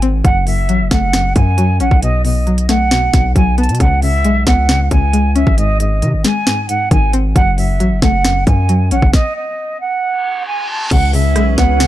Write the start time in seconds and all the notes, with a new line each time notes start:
Already playing: G#1 G#2 D#3 G#3
0.02 C4, closed hi-hat
0.25 F#1 F#2 F#5, kick, closed hi-hat
0.47 F#2 E5, open hi-hat
0.69 A1 F#3, closed hi-hat
0.80 F#1
0.91 F#1 A3 F#5, kick, snare, closed hi-hat
1.13 F#2, snare, closed hi-hat
1.36 F#2 G#5, kick, closed hi-hat
1.58 F#3, closed hi-hat
1.80 A1 C#4 F#5, closed hi-hat
1.91 B1, kick
2.02 B2 D#5, closed hi-hat
2.25 B2 D#5, open hi-hat
2.47 F#3, closed hi-hat
2.58 closed hi-hat
2.69 A3 F#5, snare, closed hi-hat
2.91 B2, snare, closed hi-hat
3.13 B1 B2, kick, snare, closed hi-hat
3.36 B1 F#3 G#5, kick, closed hi-hat
3.58 B3 A5, closed hi-hat
3.63 closed hi-hat
3.69 B2, closed hi-hat
3.75 closed hi-hat
3.80 C#2 C#3 F#5, kick, closed hi-hat
4.02 C#3 E5, open hi-hat
4.24 B1 G#3, closed hi-hat
4.47 C#2 B3 F#5, kick, snare, closed hi-hat
4.69 C#3, snare, closed hi-hat
4.91 C#2 C#3 G#5, kick, closed hi-hat
5.13 G#3, closed hi-hat
5.36 C#4 E5, closed hi-hat
5.47 G#1, kick
5.58 G#2 D#5, closed hi-hat
5.80 G#2 D#5, closed hi-hat
6.02 C3 D#3, closed hi-hat
6.14 G#1
6.24 G#3 G#5, snare, closed hi-hat
6.47 G#2, snare, closed hi-hat
6.69 G#2 F#5, closed hi-hat
6.91 G#1 D#3 G#5, kick, closed hi-hat
7.13 C4, closed hi-hat
7.36 F#1 F#2 F#5, kick, closed hi-hat
7.58 F#2 E5, open hi-hat
7.80 A1 F#3, closed hi-hat
7.91 F#1
8.02 F#1 A3 F#5, kick, snare, closed hi-hat
8.25 F#2, snare, closed hi-hat
8.47 F#2 G#5, kick, closed hi-hat
8.69 F#3, closed hi-hat
8.91 A1 C#4 F#5, closed hi-hat
9.02 F#1, kick
9.13 D#5, kick, snare
9.36 D#5
9.80 F#5
10.02 reverse cymbal
10.47 G#5
10.69 A5
10.91 C#2 C#3 E3 C#4 G#4 B4 F#5, kick, closed hi-hat, crash
11.13 C#3 E5, open hi-hat
11.36 B1 G#3, cross-stick, closed hi-hat
11.58 C#2 B3 F#5, kick, snare, closed hi-hat
11.80 C#3, snare, closed hi-hat